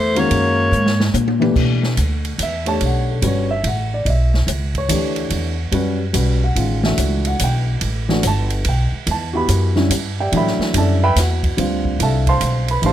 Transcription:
Already playing: upright bass E2, tenor saxophone A3, soprano saxophone C5
0.15 grand piano D#3 G#3 C#4 F#4 A#4, tenor saxophone A#3, ride
0.19 soprano saxophone C#5
0.30 upright bass F#2, ride
0.72 upright bass G#2, hi-hat pedal
0.86 snare
1.00 snare
1.13 upright bass A#2, hi-hat pedal, high tom
1.28 high tom
1.40 grand piano E3 A3 D4 G4 B4, high tom
1.55 upright bass B2, kick, crash
1.83 snare
1.97 upright bass D2, hi-hat pedal, ride
2.25 ride
2.38 upright bass E2, hi-hat pedal, ride
2.43 grand piano E5
2.66 grand piano A3 D4 G4 C#5 A5, ride
2.80 upright bass B1, ride
2.86 grand piano F#5
3.11 grand piano A4
3.22 upright bass G1, grand piano G3 C#4 F#4 B4, hi-hat pedal, ride
3.27 grand piano C#5
3.51 grand piano E5
3.64 upright bass A1, grand piano F#5, ride
3.94 grand piano D5
4.05 upright bass B1, grand piano D#5, ride
4.10 grand piano E5
4.34 snare
4.47 upright bass C#2, hi-hat pedal, ride
4.75 grand piano C#5, kick, ride
4.89 upright bass D2, grand piano E3 A3 D4 G4, hi-hat pedal, ride
5.16 ride
5.30 upright bass E2, ride
5.72 upright bass F#2, grand piano G3 C#4 F#4 B4, ride
6.13 upright bass B1, grand piano G3 C#4 F#4 B4, hi-hat pedal, ride
6.44 grand piano F#5
6.55 upright bass A1, grand piano D#3 G#3 C#4 F4, ride
6.83 grand piano E3 A3 D4 F#4 E5, snare
6.97 upright bass C#2, hi-hat pedal, ride
7.25 grand piano F#5, ride
7.39 upright bass B1, hi-hat pedal, ride
7.44 grand piano G5
7.81 upright bass A1, ride
8.09 grand piano E3 A3 D4 F#4, snare
8.23 upright bass G1, hi-hat pedal, ride
8.27 grand piano A5
8.50 ride
8.65 upright bass B1, ride
8.69 grand piano G5
8.92 muted upright bass stroke
9.07 upright bass E2, ride
9.11 grand piano A5
9.33 grand piano B3 E4 F#4 G4 B5
9.48 upright bass F#2, hi-hat pedal, ride
9.75 grand piano D3 G3 C#4 E4, snare
9.90 upright bass G2, hi-hat pedal, ride
10.20 grand piano G4 D5 E5 G5
10.32 upright bass A2, grand piano E3 F#3 A3 D4, ride
10.37 grand piano B4 E5 G5 B5
10.47 snare
10.59 muted upright bass stroke, snare
10.74 upright bass F#2, grand piano D3 G3 C#4 E4 A5, hi-hat pedal, ride
10.78 grand piano A4 D5 E5
11.03 grand piano B4 E5 G5 B5
11.16 upright bass E2, grand piano F#4, snare, hi-hat pedal, ride
11.43 kick, ride
11.57 upright bass D2, grand piano D3 G3 C4 F4, ride
11.85 kick
11.99 upright bass C2, grand piano A4 E5 F5 A5, hi-hat pedal, ride
12.27 grand piano C5 F5 A5 C6, kick, ride
12.41 upright bass B1, hi-hat pedal, ride
12.68 grand piano B4 B5, ride
12.82 upright bass A1, grand piano E3 A3 D4 G4, ride
12.86 grand piano C5 F5 A5 C6

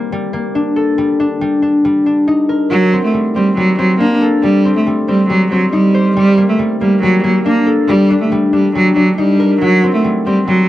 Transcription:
Already playing: harp G3 A#3 C4 D#4 C5
0.12 harp G3
0.33 harp A#3
0.55 harp D4
0.76 harp A4
0.98 harp G3
1.20 harp D4
1.41 harp G3
1.62 harp D4
1.85 harp G3
2.06 harp D4
2.28 harp D#4
2.49 harp A#4
2.71 cello F#3, harp F#3
2.93 harp C4
3.04 cello A3
3.14 harp G3
3.35 cello G3, harp C4
3.57 cello F#3, harp G3
3.79 cello F#3, harp C4
4.00 cello A#3, harp D4
4.22 harp A4
4.43 cello G3, harp G3
4.65 harp C4
4.76 cello A3
4.87 harp G3
5.08 cello G3, harp C4
5.29 cello F#3, harp G3
5.51 cello F#3, harp C4
5.73 cello G3, harp D#4
5.94 harp C5
6.16 cello G3, harp G3
6.38 harp A#3
6.49 cello A3
6.59 harp G3
6.81 cello G3, harp A#3
7.02 cello F#3, harp G3
7.24 cello F#3, harp A#3
7.46 cello A#3, harp D4
7.67 harp A4
7.88 cello G3, harp G3
8.10 harp D4
8.21 cello A3
8.32 harp G3
8.53 cello G3, harp D4
8.75 cello F#3, harp G3
8.96 cello F#3, harp D4
9.17 cello G3, harp D#4
9.40 harp A#4
9.61 cello F#3, harp F#3
9.84 harp C4
9.94 cello A3
10.04 harp G3
10.26 cello G3, harp C4
10.48 cello F#3, harp G3

